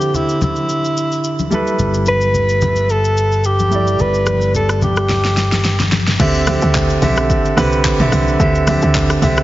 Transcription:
Already playing: D3 C4 E4 G4
0.01 shaker
0.14 E4, low conga, shaker
0.29 shaker
0.41 E4, high conga, low conga, shaker
0.56 shaker
0.69 shaker
0.85 shaker
0.97 shaker
1.12 shaker
1.24 shaker
1.39 high conga, shaker
1.50 G3 E4 A4 B4, high conga, shaker
1.67 shaker
1.79 G1, low conga, shaker
1.94 shaker
2.06 B4, high conga, shaker
2.21 shaker
2.34 low conga, shaker
2.49 shaker
2.61 high conga, low conga, shaker
2.76 shaker
2.89 A4, shaker
3.05 shaker
3.17 shaker
3.32 shaker
3.44 G4, shaker
3.59 high conga, shaker
3.70 G3 E4 A4 D5, high conga, shaker
3.87 shaker
3.99 G1 B4, low conga, shaker
4.14 shaker
4.26 cross-stick, high conga, shaker
4.41 shaker
4.54 A4, low conga, shaker
4.69 cross-stick, shaker
4.82 G4, high conga, low conga, shaker
4.96 cross-stick, shaker
5.09 snare, low conga, shaker
5.25 snare, shaker
5.37 snare, shaker
5.52 snare, high conga, shaker
5.64 snare, shaker
5.79 snare, high conga, shaker
5.92 snare, high conga, shaker
6.07 snare, shaker
6.19 D2 D3 C4 G4 E5, kick, crash, low conga, shaker
6.35 shaker
6.47 D3 C4 G4 E5, cross-stick, open hi-hat, high conga, shaker
6.62 D2, shaker
6.75 kick, clap, low conga, shaker
6.90 shaker
7.02 B1 D3 C4 G4 E5, open hi-hat, high conga, low conga, shaker
7.17 cross-stick, shaker
7.30 kick, shaker
7.45 shaker
7.57 C2 D3 C4 G4 B4, cross-stick, open hi-hat, shaker
7.72 shaker
7.85 kick, clap, shaker
7.99 D3 C4 G4 E5, mid tom, high conga, shaker
8.12 C2, cross-stick, open hi-hat, high conga, shaker
8.28 shaker
8.39 D2 D3 C4 G4 E5, kick, low conga, shaker
8.55 shaker
8.67 D3 C4 G4 E5, cross-stick, open hi-hat, high conga, shaker
8.82 D2, shaker
8.95 kick, clap, low conga, shaker
9.10 cross-stick, shaker
9.22 C2 D3 C4 G4 E5, open hi-hat, high conga, low conga, shaker
9.37 cross-stick, shaker

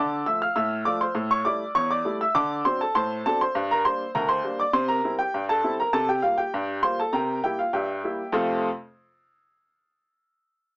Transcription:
Already playing: D3 D5 A5 D6
0.26 F3 A3 F4 E5 E6
0.42 F5 F6
0.56 A2 E5 E6
0.85 F3 A3 F4 D5 D6
1.01 C5 C6
1.15 A2
1.31 C#5 C#6
1.45 G3 A3 E4 D5 D6
1.75 E2 C#5 C#6
1.91 D5 D6
2.05 G3 A3 E4
2.21 E5 E6
2.35 D3 D5 A5 D6
2.65 F#3 C4 D4 C5 C6
2.81 A4 A5
2.95 A2 C5 A5 C6
3.26 F#3 C4 D4 A4 A5
3.41 C5 C6
3.55 G2
3.71 A#4 A#5
3.85 G3 A#3 D4 C5 C6
4.15 D2 A#4 A#5
4.29 C5 C6
4.44 G3 A#3 D4
4.60 D5 D6
4.73 C3 C5 C6
4.88 A#4 A#5
5.04 G3 C4 E4
5.19 G4 G5
5.34 G2
5.49 A4 A5
5.64 G3 C4 E4
5.80 A#4 A#5
5.93 C3 A4 A5
6.09 G4 G5
6.22 G3 A#3 F4 F5
6.38 G4 G5
6.54 G2
6.83 G3 A#3 F4 C5 C6
7.00 A4 A5
7.13 C3 A#4 G5 A#5
7.44 G3 A#3 E4 G4 G5
7.59 F4 F5
7.73 G2 G4 E5 G5
8.04 G3 A#3 E4
8.32 F2 C3 A3 C4 F4 A4 F5

